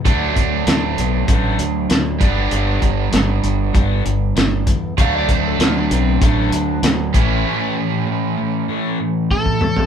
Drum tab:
HH |x-x-x-x-x-x-x-x-|x-x-x-x-x-x-x-x-|x-x-x-x-x-x-x-x-|----------------|
SD |----o-------o---|----o-------o---|----o-------o---|----------------|
T2 |----------------|----------------|----------------|--------------o-|
FT |----------------|----------------|----------------|---------------o|
BD |o-o-----o-----o-|--o-----o-----o-|o-o-----o-----o-|------------oo--|